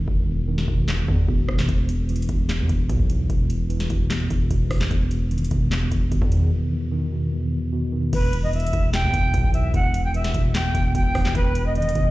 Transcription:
Already playing: E2 B2 D#3
0.08 E1 E2, kick
0.28 E2
0.47 D#3
0.58 snare
0.68 E1 B2, kick
0.88 E2, snare, clap
1.08 E2, kick
1.28 E1 B2, kick
1.48 E1 D#3, kick, cross-stick
1.59 snare, clap
1.69 E1 E2, kick, closed hi-hat
1.89 E2, closed hi-hat
2.09 E3, closed hi-hat
2.16 closed hi-hat
2.22 closed hi-hat
2.29 E1 B2, kick, closed hi-hat
2.49 E2, snare, clap, closed hi-hat
2.59 E2
2.69 E1 E2, kick, closed hi-hat
2.89 B1 B2, kick, closed hi-hat
3.00 kick
3.09 E3, closed hi-hat
3.30 E1 E2, kick, closed hi-hat
3.50 E2, closed hi-hat
3.70 E3, closed hi-hat
3.80 snare, closed hi-hat
3.90 E1 B2, kick, closed hi-hat
4.10 E2, snare, clap, closed hi-hat
4.30 E1 E2, kick, closed hi-hat
4.51 E1 B2, kick, closed hi-hat
4.71 E1 E3, kick, cross-stick, open hi-hat
4.81 snare, clap
4.91 E1 E2, kick, closed hi-hat
5.11 E2, closed hi-hat
5.31 D#3, closed hi-hat
5.38 closed hi-hat
5.45 closed hi-hat
5.51 E1 B2, kick, closed hi-hat
5.71 E2, snare, clap, closed hi-hat
5.91 E1 E2, kick, closed hi-hat
6.11 E1 B2, kick, closed hi-hat
6.22 E2, kick
6.32 D#3, closed hi-hat
6.52 E2
6.72 E2
6.91 D#3
7.13 B2
7.33 E2
7.53 E2
7.72 B2
7.93 D#3
8.13 E1 E2 B4, kick, closed hi-hat, crash
8.33 E2, closed hi-hat
8.43 D#5
8.53 E3 E5, closed hi-hat
8.60 closed hi-hat
8.67 closed hi-hat
8.73 E1 B2, kick, closed hi-hat
8.93 E2 G5, snare, clap, closed hi-hat
9.04 E2
9.13 E1 E2, kick, closed hi-hat
9.34 B1 B2, kick, closed hi-hat
9.44 kick
9.53 E3 E5, closed hi-hat
9.74 E1 E2 F#5, kick, closed hi-hat
9.94 E2, closed hi-hat
10.04 G5
10.14 E3 E5, closed hi-hat
10.24 snare, closed hi-hat
10.34 E1 B2, kick, closed hi-hat
10.54 E2 G5, snare, clap, closed hi-hat
10.75 E1 E2, kick, closed hi-hat
10.95 E1 B2 G5, kick, closed hi-hat
11.15 E1 E3, kick, cross-stick, open hi-hat
11.25 snare, clap
11.35 E1 E2 B4, kick, closed hi-hat
11.55 E2, closed hi-hat
11.66 D#5
11.75 D#3 D#5, closed hi-hat
11.82 closed hi-hat
11.89 closed hi-hat
11.95 E1 B2, kick, closed hi-hat

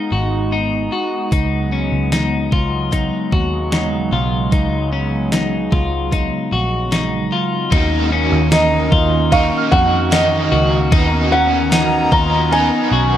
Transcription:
Already playing: G#3 B3 D#4
0.12 G#1 F#4
0.52 D#4
0.92 F#4
1.32 C#2 C#3 F#3 D#4, kick, closed hi-hat
1.72 C#4
1.92 C#2
2.12 D#4, snare, closed hi-hat
2.52 C#2 F4, kick
2.92 D#4, kick, closed hi-hat
3.32 D#2 F#4, kick
3.72 D#4, snare, closed hi-hat
4.12 B1 F4
4.52 C#2 D#4, kick, closed hi-hat
4.93 C#4
5.32 D#4, snare, closed hi-hat
5.72 C#2 F4, kick
6.12 D#4, kick, closed hi-hat
6.52 A#1 F#4
6.92 D#4, snare, closed hi-hat
7.32 F4
7.70 D#2 D#3 A#3 C#4 D#4 F#4, kick, ride
7.75 A#4 D#5
8.12 C#4
8.32 D#2
8.52 D#4 D#5 A#5, snare, ride, tambourine
8.92 D#2 F4, kick
9.31 C#4 D#4 F#4 A#4 D#5 F5 C#6, kick, ride
9.57 F6
9.72 F2 F#4 F#5, kick
10.11 C#4 D#4 F#4 A#4 D#5, snare, ride, tambourine
10.15 D#5
10.52 C#2 F#4
10.92 D#2 D#3 B3 C#4 D#4 F#4 B4 D#5 A#5, kick, ride
11.32 C#4 F#5
11.72 D#4, snare, ride, tambourine
12.11 D#2 F4 F#4 B4 D#5 A#5, kick
12.15 D#4
12.52 D#4 F#4 B4 D#5 G#5, ride
12.92 B1 F#4

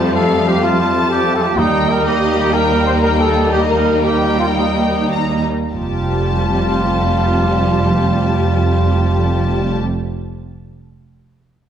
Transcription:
Already playing: F2 F3 G3 A3 C4 C5 A5
0.14 A4 F5
0.47 G4
0.62 F4 A5
0.79 F4
1.10 G4
1.35 A4
1.42 G4
1.58 D#2 G3 A#3 D#4 G5
1.90 A#4
2.05 G4 D#5
2.39 G4
2.53 A#4 G5
2.86 C5
3.03 A#4 G5
3.19 A4
3.52 G4 D#5
3.69 A#4
4.03 G4 G5
4.38 F4
4.56 D#4
4.75 D#4
5.13 A#5
5.72 F1 F2 G3 F4 G4 A5

